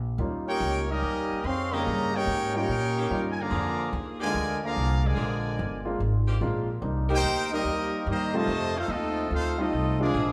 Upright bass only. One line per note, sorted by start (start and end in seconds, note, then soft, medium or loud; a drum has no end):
0.00 0.18 A#1 medium
0.18 0.59 D#2 loud
0.60 1.01 C#2 loud
1.02 1.28 D#2 medium
1.32 muted upright bass stroke soft
1.44 1.84 F2 loud
1.87 2.27 G2 loud
2.27 2.67 G#2 loud
2.69 3.09 A#2 loud
3.11 3.51 G2 loud
3.51 3.91 F2 loud
3.93 4.33 D#2 loud
4.34 4.75 D2 medium
4.76 5.16 C2 loud
5.17 5.57 A#1 medium
5.59 5.99 G1 loud
6.00 6.40 G#1 loud
6.41 6.82 A#1 medium
6.82 7.22 C2 loud
7.22 7.64 D2 loud
7.65 8.05 D#2 medium
8.07 8.47 G2 loud
8.47 8.88 F2 loud
8.88 9.29 D#2 loud
9.31 9.71 D2 loud
9.73 10.13 C2 medium
10.14 10.32 A#1 loud